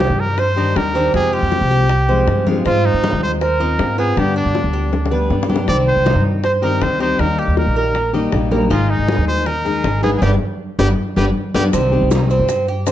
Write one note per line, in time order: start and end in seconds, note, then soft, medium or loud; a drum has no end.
0.00 0.37 C3 medium
0.00 0.37 D#3 medium
0.00 0.38 G3 medium
0.00 0.37 D4 medium
0.00 0.21 G4 medium
0.00 0.38 G4 medium
0.00 high bongo soft
0.00 high conga medium
0.10 0.73 G2 medium
0.19 0.40 A#4 medium
0.19 high conga soft
0.38 0.57 C5 medium
0.38 0.78 C5 medium
0.38 muted steel-string acoustic guitar stroke medium
0.38 high bongo medium
0.38 high conga soft
0.56 0.74 D#3 medium
0.56 0.75 G3 medium
0.56 0.75 D4 medium
0.56 0.94 D#4 medium
0.56 0.75 G4 medium
0.56 high conga soft
0.75 1.12 D#2 medium
0.75 0.94 D#3 soft
0.75 0.94 G3 soft
0.75 0.94 D4 soft
0.75 0.93 G4 soft
0.75 1.14 A#4 medium
0.75 high bongo medium
0.75 low bongo medium
0.75 high conga soft
0.95 1.14 D#3 soft
0.95 1.14 G3 soft
0.95 1.32 C4 medium
0.95 1.13 D4 medium
0.95 1.13 G4 medium
1.13 1.41 F2 medium
1.13 1.88 C3 medium
1.13 1.90 F3 medium
1.13 1.90 G#3 medium
1.13 1.90 C4 medium
1.13 1.89 G4 medium
1.13 1.35 G#4 medium
1.13 high bongo medium
1.13 high conga soft
1.33 1.70 F4 medium
1.33 2.47 G4 medium
1.33 high conga soft
1.42 1.60 F2 medium
1.52 high bongo medium
1.52 high conga soft
1.61 2.24 C2 medium
1.71 2.07 G4 medium
1.71 high bongo soft
1.71 high conga soft
1.89 muted steel-string acoustic guitar stroke medium
1.89 high bongo medium
1.89 high conga soft
2.09 2.26 F3 soft
2.09 2.27 G#3 medium
2.09 2.27 C4 medium
2.09 2.27 G4 medium
2.09 2.45 C5 medium
2.09 high bongo soft
2.09 high conga soft
2.27 2.63 G2 medium
2.27 2.46 F3 soft
2.27 2.46 G#3 soft
2.27 2.46 C4 soft
2.27 2.45 G4 soft
2.27 high bongo medium
2.27 low bongo medium
2.27 high conga soft
2.46 2.66 F3 medium
2.46 2.64 G#3 medium
2.46 2.65 C4 medium
2.46 2.65 F4 medium
2.46 2.65 G4 medium
2.46 high bongo soft
2.46 high conga medium
2.65 2.92 G#2 medium
2.65 3.40 G#3 medium
2.65 3.02 C4 medium
2.65 3.40 C4 medium
2.65 2.87 F4 medium
2.65 3.41 F4 medium
2.65 high bongo medium
2.65 high conga soft
2.85 3.23 D#4 medium
2.85 high conga soft
2.94 3.12 G#2 medium
3.04 3.40 D#4 medium
3.04 high bongo medium
3.04 high conga medium
3.13 3.76 D#2 medium
3.23 3.31 C5 medium
3.23 high conga soft
3.41 3.94 A#4 medium
3.41 3.59 C5 medium
3.41 muted steel-string acoustic guitar stroke medium
3.41 high bongo medium
3.41 high conga soft
3.60 3.79 C4 medium
3.60 3.97 D#4 medium
3.60 3.78 F4 medium
3.60 high conga soft
3.79 4.15 G#2 medium
3.79 3.97 G#3 soft
3.79 3.98 C4 soft
3.79 3.96 F4 soft
3.79 high bongo medium
3.79 low bongo medium
3.79 high conga soft
3.98 4.35 B3 medium
3.98 4.17 C4 medium
3.98 4.16 F4 medium
3.98 4.19 G#4 medium
4.16 4.44 G2 medium
4.16 4.91 D3 medium
4.16 4.93 G3 medium
4.16 4.92 B3 medium
4.16 4.92 D4 medium
4.16 4.36 G4 medium
4.16 4.93 G4 medium
4.16 high bongo medium
4.16 high conga soft
4.36 4.72 D4 medium
4.36 5.19 D4 medium
4.36 high conga soft
4.45 4.63 G2 medium
4.55 high bongo medium
4.55 high conga medium
4.64 5.27 D2 medium
4.73 5.10 G4 medium
4.73 high conga soft
4.92 muted steel-string acoustic guitar stroke medium
4.92 low bongo medium
4.92 high conga soft
5.06 low bongo medium
5.11 5.29 G3 soft
5.11 5.29 B3 medium
5.11 5.30 D4 medium
5.11 5.29 G4 medium
5.11 5.48 B4 medium
5.11 high conga soft
5.30 5.66 G2 medium
5.30 5.48 G3 soft
5.30 5.49 B3 soft
5.30 5.48 D4 soft
5.30 5.48 G4 soft
5.30 low bongo medium
5.30 high conga soft
5.43 low bongo medium
5.49 5.68 G3 soft
5.49 5.68 B3 medium
5.49 5.68 D4 medium
5.49 5.67 G4 medium
5.49 5.68 G4 medium
5.49 high conga medium
5.56 low bongo medium
5.67 5.95 C2 medium
5.67 6.42 C3 medium
5.67 6.43 D#3 medium
5.67 6.44 G3 medium
5.67 6.05 C4 medium
5.67 6.43 C4 medium
5.67 6.44 G4 medium
5.67 5.77 D5 medium
5.67 high bongo medium
5.67 high conga soft
5.87 6.23 C5 medium
5.87 high conga soft
5.96 6.14 C2 medium
6.06 6.43 D#4 medium
6.06 high bongo medium
6.06 high conga medium
6.15 6.78 G2 medium
6.25 high conga soft
6.44 6.52 C5 medium
6.44 6.62 C5 medium
6.44 muted steel-string acoustic guitar stroke medium
6.44 high bongo medium
6.44 high conga soft
6.62 6.80 D#3 soft
6.62 6.81 G3 medium
6.62 6.81 C4 medium
6.62 6.99 D#4 medium
6.62 6.81 G4 medium
6.62 6.84 A#4 medium
6.62 high conga soft
6.81 7.18 D2 medium
6.81 6.99 D#3 soft
6.81 7.00 G3 medium
6.81 6.99 C4 soft
6.81 6.99 G4 soft
6.81 7.01 C5 medium
6.81 high bongo medium
6.81 low bongo medium
6.81 high conga soft
7.00 7.17 D#3 soft
7.00 7.18 G3 soft
7.00 7.19 C4 medium
7.00 7.37 D#4 medium
7.00 7.18 G4 medium
7.00 7.22 C5 medium
7.18 7.46 D#2 medium
7.18 7.94 D#3 medium
7.18 7.94 G3 medium
7.18 7.95 A#3 medium
7.18 7.95 D#4 medium
7.18 7.95 G4 medium
7.18 7.40 A#4 medium
7.18 high bongo medium
7.18 high conga soft
7.39 7.75 G4 medium
7.39 7.57 G4 medium
7.39 high conga soft
7.48 7.66 D#2 medium
7.57 7.75 A#4 medium
7.57 high bongo medium
7.57 high conga medium
7.67 8.30 A#1 medium
7.76 8.13 A#4 medium
7.76 8.12 A#4 medium
7.76 high bongo soft
7.76 high conga soft
7.95 muted steel-string acoustic guitar stroke soft
7.95 high bongo medium
7.95 high conga soft
8.13 8.31 G3 medium
8.13 8.32 A#3 medium
8.13 8.32 D#4 medium
8.13 8.32 G4 medium
8.13 8.51 D#5 medium
8.13 high bongo soft
8.13 high conga soft
8.32 8.69 A#1 medium
8.32 8.51 G3 soft
8.32 8.51 A#3 soft
8.32 8.51 D#4 soft
8.32 8.50 G4 medium
8.32 high bongo medium
8.32 low bongo medium
8.32 high conga soft
8.51 8.69 G3 medium
8.51 8.70 A#3 medium
8.51 8.70 D#4 medium
8.51 8.70 G4 medium
8.51 8.70 A#4 medium
8.51 high bongo soft
8.51 high conga medium
8.70 8.98 G#1 medium
8.70 9.45 D#3 medium
8.70 9.45 G#3 medium
8.70 9.07 D#4 medium
8.70 9.46 D#4 medium
8.70 8.91 F4 medium
8.70 9.46 G#4 medium
8.70 high bongo medium
8.70 high conga soft
8.90 9.27 D#4 medium
8.90 high conga soft
8.99 9.17 G#1 medium
9.08 9.45 G#4 medium
9.08 high bongo medium
9.08 high conga medium
9.18 9.81 D#2 medium
9.27 9.48 C5 medium
9.27 high conga soft
9.46 10.03 A#4 medium
9.46 9.65 D#5 medium
9.46 muted steel-string acoustic guitar stroke medium
9.46 high bongo medium
9.46 high conga soft
9.65 9.83 G#3 soft
9.65 9.84 D#4 medium
9.65 9.83 G#4 medium
9.65 10.02 G#4 medium
9.65 high conga soft
9.84 10.20 G#1 medium
9.84 10.02 D#3 soft
9.84 10.03 G#3 soft
9.84 10.02 D#4 soft
9.84 10.01 G#4 medium
9.84 high bongo medium
9.84 low bongo medium
9.84 high conga soft
10.02 10.22 G#3 soft
10.02 10.21 B3 medium
10.02 10.22 D#4 medium
10.02 10.21 G#4 medium
10.02 10.10 G#4 medium
10.02 high conga medium
10.18 10.21 G#4 medium
10.22 10.36 G1 medium
10.22 10.34 G3 medium
10.22 10.34 B3 medium
10.22 10.34 D4 medium
10.22 10.31 G4 medium
10.22 10.34 G4 medium
10.22 10.34 B4 medium
10.22 low bongo medium
10.22 high conga medium
10.79 10.93 G1 medium
10.79 10.91 G3 medium
10.79 10.91 B3 medium
10.79 10.91 D4 medium
10.79 10.88 G4 medium
10.79 10.91 G4 medium
10.79 10.91 B4 medium
10.79 low bongo medium
10.79 high conga medium
11.16 11.31 G1 medium
11.16 11.29 G3 medium
11.16 11.29 B3 medium
11.16 11.29 D4 medium
11.16 11.26 G4 medium
11.16 11.29 G4 medium
11.16 11.29 B4 medium
11.16 low bongo medium
11.16 high conga medium
11.54 11.69 G1 medium
11.54 11.67 G3 medium
11.54 11.67 B3 medium
11.54 11.67 D4 medium
11.54 11.64 G4 medium
11.54 11.67 G4 medium
11.54 11.67 B4 medium
11.54 low bongo medium
11.54 high conga medium
11.73 12.00 C2 medium
11.73 11.91 C3 medium
11.73 11.92 D#3 medium
11.73 11.92 G3 medium
11.73 12.10 C4 medium
11.73 11.91 C4 medium
11.73 11.90 G4 medium
11.73 high bongo medium
11.73 high conga soft
11.73 maracas medium
11.92 12.09 D#3 medium
11.92 12.10 G3 medium
11.92 12.11 C4 medium
11.92 12.10 G4 medium
11.92 high conga soft
12.02 12.38 C2 medium
12.11 12.48 D#3 soft
12.11 12.48 G3 medium
12.11 12.48 C4 soft
12.11 12.30 D#4 medium
12.11 12.48 G4 medium
12.11 high bongo medium
12.11 high conga medium
12.11 maracas medium
12.30 12.67 C4 medium
12.30 high conga soft
12.30 maracas soft
12.39 12.92 G2 medium
12.48 muted steel-string acoustic guitar stroke medium
12.48 high bongo medium
12.48 high conga soft
12.48 maracas medium
12.68 12.87 G4 medium
12.68 high conga soft
12.86 12.92 D#3 soft
12.86 12.92 G3 soft
12.86 12.92 C4 medium
12.86 12.92 C4 soft
12.86 12.92 G4 medium
12.86 high bongo medium
12.86 low bongo medium
12.86 high conga soft
12.86 maracas medium